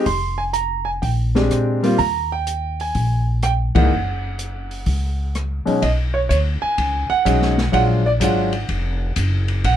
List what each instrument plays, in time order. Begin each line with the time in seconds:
0.06 upright bass F1, grand piano C6, kick, open hi-hat
0.38 grand piano G#5
0.53 grand piano A#5, closed hi-hat
0.85 grand piano G#5
1.02 upright bass A#1, grand piano G5, kick, open hi-hat
1.35 grand piano G#3 C4 D4 G4, snare
1.51 upright bass A#2, cross-stick, closed hi-hat
1.83 grand piano G3 A#3 C4 F4, open hi-hat
1.98 upright bass D#2, grand piano A#5, kick, open hi-hat
2.32 grand piano G5
2.47 closed hi-hat
2.80 grand piano G#5, open hi-hat
2.95 upright bass A#1, kick, open hi-hat
3.43 grand piano G5, cross-stick, closed hi-hat
3.75 upright bass C#2, grand piano E3 G#3 A#3 D#4 F#5, kick, ride
3.91 upright bass F#1
4.39 closed hi-hat
4.71 open hi-hat
4.86 upright bass C#2, kick, open hi-hat
5.35 cross-stick, closed hi-hat
5.66 grand piano B2 F#3 G#3 C#4 D#4, muted upright bass stroke, open hi-hat
5.82 upright bass B1, grand piano D#5, kick, ride
6.14 grand piano C#5
6.29 upright bass D2, grand piano C#5, kick, hi-hat pedal, ride
6.62 grand piano G#5, muted upright bass stroke
6.78 upright bass C#2, kick, ride
7.09 grand piano F#5, muted upright bass stroke
7.25 upright bass B1, grand piano F#3 G#3 C#4 D#4, kick, hi-hat pedal, ride
7.42 snare
7.58 snare
7.72 upright bass A#1, grand piano F#3 G#3 D4 F4 F#5, kick, ride
8.06 grand piano D5
8.20 upright bass G#1, grand piano F#3 G#3 D4 F4 F#5, kick, hi-hat pedal, ride
8.53 ride
8.69 upright bass F1, kick, ride
9.16 upright bass F#1, kick, hi-hat pedal, ride
9.48 ride
9.64 upright bass A#1, grand piano F#5, kick, ride